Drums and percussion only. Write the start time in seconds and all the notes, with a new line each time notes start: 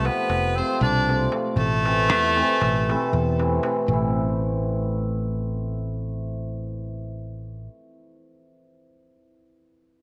0.05 darbuka tek
0.18 darbuka tek
0.30 darbuka tek
0.70 darbuka tek
0.82 darbuka dum
0.95 darbuka tek
1.09 darbuka tek
1.21 darbuka tek
1.32 darbuka tek
1.56 darbuka dum
1.70 darbuka tek
1.85 darbuka tek
2.09 darbuka tek
2.24 darbuka tek
2.37 darbuka tek
2.49 darbuka tek
2.61 darbuka tek, darbuka dum
2.89 darbuka tek
3.13 darbuka dum
3.27 darbuka tek
3.40 darbuka tek
3.63 darbuka tek
3.88 darbuka dum